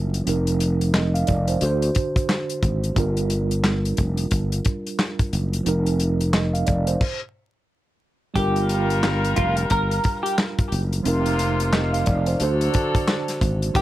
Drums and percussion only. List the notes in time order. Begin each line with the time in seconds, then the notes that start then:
0.14 closed hi-hat
0.27 closed hi-hat
0.47 closed hi-hat
0.60 closed hi-hat
0.81 closed hi-hat
0.94 snare, clap
1.15 closed hi-hat
1.27 kick, closed hi-hat
1.48 closed hi-hat
1.61 closed hi-hat
1.82 closed hi-hat
1.95 kick, closed hi-hat
2.16 kick, closed hi-hat
2.29 snare, clap
2.50 closed hi-hat
2.63 kick, closed hi-hat
2.84 closed hi-hat
2.96 kick, closed hi-hat
3.17 closed hi-hat
3.30 closed hi-hat
3.51 closed hi-hat
3.64 snare, clap
3.85 closed hi-hat
3.97 kick, closed hi-hat
4.17 closed hi-hat
4.31 kick, closed hi-hat
4.52 closed hi-hat
4.65 kick, closed hi-hat
4.87 closed hi-hat
4.99 snare, clap
5.19 kick, closed hi-hat
5.33 closed hi-hat
5.53 closed hi-hat
5.66 closed hi-hat
5.86 closed hi-hat
6.00 closed hi-hat
6.21 closed hi-hat
6.33 snare, clap
6.55 closed hi-hat
6.67 kick, closed hi-hat
6.87 closed hi-hat
7.01 kick, crash
8.36 kick, closed hi-hat
8.56 closed hi-hat
8.69 closed hi-hat
8.90 closed hi-hat
9.03 snare, clap
9.24 closed hi-hat
9.36 kick, closed hi-hat
9.57 closed hi-hat
9.70 kick, closed hi-hat
9.91 closed hi-hat
10.04 kick, closed hi-hat
10.26 closed hi-hat
10.38 snare, clap
10.59 kick, closed hi-hat
10.72 closed hi-hat
10.93 closed hi-hat
11.05 closed hi-hat
11.26 closed hi-hat
11.39 closed hi-hat
11.60 closed hi-hat
11.73 snare, clap
11.94 closed hi-hat
12.06 kick, closed hi-hat
12.26 closed hi-hat
12.40 closed hi-hat
12.61 closed hi-hat
12.74 kick, closed hi-hat
12.95 kick, closed hi-hat
13.08 snare, clap
13.28 snare, closed hi-hat
13.41 kick, closed hi-hat
13.62 closed hi-hat
13.75 kick, closed hi-hat